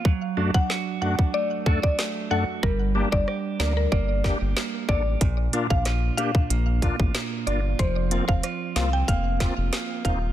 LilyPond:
<<
  \new Staff \with { instrumentName = "Synth pluck" } { \time 4/4 \key g \minor \tempo 4 = 93 r8. fis''16 r8 fis''16 r16 d''16 r8 d''16 r8 fis''16 r16 | bes'16 r8 d''16 r8 d''16 bes'16 d''8. r8. d''16 r16 | r8. f''16 r8 f''16 r4. r16 d''16 r16 | c''16 r8 f''16 r8 f''16 g''16 f''8. r8. f''16 r16 | }
  \new Staff \with { instrumentName = "Clean electric guitar" } { \time 4/4 \key g \minor fis8 d'8 fis'8 d'8 a8 fis'8 a8 fis'8 | g8 d'8 g'8 d'8 bes8 g'8 bes8 g'8 | bes,8 d'8 f'8 d'8 bes8 f'8 bes8 f'8 | f8 c'8 f'8 c'8 bes8 f'8 bes8 f'8 | }
  \new Staff \with { instrumentName = "Tonewheel organ" } { \time 4/4 \key g \minor r8 <fis, a d' fis'>8 r8 <fis, a d' fis'>8 r8 <fis, a d' a'>8 r8 <fis, a d' a'>8 | r8 <bes d' g'>8 r8 <bes d' bes'>8 r8 <bes d' g'>8 r8 <bes d' a'>8 | r8 <bes d' f'>8 r8 <bes d' g'>8 r8 <bes d' f'>8 r8 <bes d' f'>8 | r8 <bes c' f'>8 r8 <bes c' f'>8 r8 <bes c' f'>8 r8 <bes c' ees'>8 | }
  \new Staff \with { instrumentName = "Analog synth bass" } { \clef bass \time 4/4 \key g \minor r1 | g,,8. g,,16 r8 d,8 g,,8. g,,16 r8 a,,8 | bes,,8 r16 bes,,8. r8 bes,,8. a,,16 r8 g,,8 | f,,8. f,,16 r8 c,8 f,,8. f,,16 r8 ees,,8 | }
  \new DrumStaff \with { instrumentName = "Drums" } \drummode { \time 4/4 bd8. bd16 sn8. bd16 r8 bd16 bd16 sn4 | bd8. bd16 ss8 sn8 bd8 <bd sn>8 sn8 bd8 | <hh bd>8 hh16 bd16 <hh ss sn>8 hh16 bd16 hh8 <hh bd>16 bd16 <hh sn>8 hh8 | <hh bd>8 hh16 bd16 <hh ss>8 <hh sn>8 <hh bd>8 <hh bd sn>8 <hh sn>8 <hh bd>8 | }
>>